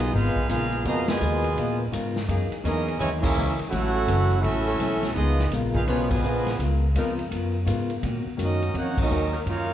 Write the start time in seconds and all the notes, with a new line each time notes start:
Already playing: B1
0.12 G#1 C#3 G#3 B3 D#4 F4 G#4 A#4 B4 F5, kick
0.35 muted upright bass stroke, kick
0.48 A#1 C#3 G#3 B3 D#4 F4 G#4 A#4 B4 F5, hi-hat pedal, ride
0.72 ride
0.83 F2 B2 C#3 F3 A#3 B3 D#4 G#4 B4 D#5 F5 A#5, kick, ride
0.87 F4 A#4
1.07 B2 F3 G#3 F4 B4 D#5 G#5, snare, ride
1.21 D#2 C#3 B3 F4 A#4, hi-hat pedal
1.44 ride
1.56 A#2 C#3 B3 F4 A#4, kick, ride
1.91 G#2 C#3 B3 F4 A#4, kick, hi-hat pedal, ride
2.16 snare
2.28 F#2 E3 A#3 D#4 G#4, kick, ride
2.51 muted upright bass stroke, ride
2.62 E2 F#2 E3 A#3 C#4 D#4 G#4 A#4 D#5, kick, hi-hat pedal, ride
2.88 ride
2.98 D#2 F#2 C#3 E3 G#3 E4 A#4 C#5 G#5, kick, ride
3.03 A#3 D#4
3.20 A#3 C#4 E4 G#4 A#4 E5, kick, crash
3.36 C#2 F#2 E3 A#3 D#4, hi-hat pedal
3.59 muted upright bass stroke, ride
3.69 A1 F#2 A3 C#4 E4 F#4 A4 C#5 F#5, kick, ride
3.73 E3 A3 C#4
4.08 F#1 F#2 E3 A3 C#4, kick, hi-hat pedal, ride
4.31 ride
4.39 A3 C#4 E4 F#4 A4 E5
4.43 A1 F#2 E3 A3 C#4, kick, ride
4.66 F#3 C#4 E4 A4
4.79 B1 F#2 E3 A3 C#4, kick, hi-hat pedal, ride
5.03 snare, ride
5.13 C#2 C#3 G#3 B3 D#4 F4 G#4 D#5, kick, ride
5.17 B3 F4 A#4
5.39 snare
5.51 A#1 C#3 B3 F4 A#4, kick, hi-hat pedal, ride
5.73 G#3 B3 D#4 F4 G#4 B4 F5, kick
5.85 B1 C#3 F3 G#3 B3 C#4 D#4 F4 G#4 B4 C#5, kick, ride
5.89 F4 A#4
6.10 F3 G#3 B3 F4 B4 D#5 G#5, kick, crash
6.23 A#1 C#3 B3 F4 A#4, hi-hat pedal
6.46 snare, ride
6.59 C#2 C#3 B3 F4 A#4, kick, ride
6.95 F2 C#3 F3 B3 D#4 F4 A#4, kick, hi-hat pedal, ride
7.19 ride
7.30 F#2 C#3 B3 F4 A#4, kick, ride
7.65 G#2 C#3 B3 F4 A#4, kick, hi-hat pedal, ride
7.90 ride
8.02 A#2 D#3 A#3 C#4 F#4, kick, ride
8.26 muted upright bass stroke
8.37 F#2 D#3 A#3 C#4 F#4, kick, hi-hat pedal, ride
8.41 F#3 A#3 C#4 D#4 F#4 A#4 D#5
8.62 ride
8.74 F2 D#3 A#3 C#4 F#4 A#4 C#5 F#5, kick, ride
8.78 D#4
8.98 F#3 A#3 C#4 D#4 F#4 A#4 D#5, kick, crash
9.10 D#2 D#3 A#3 C#4 F#4, hi-hat pedal
9.31 F#3 C#4 D#4 A#4, ride
9.46 F#2 D#3 A#3 C#4 D#4 F4 F#4 A#4 C#5 F5, kick, ride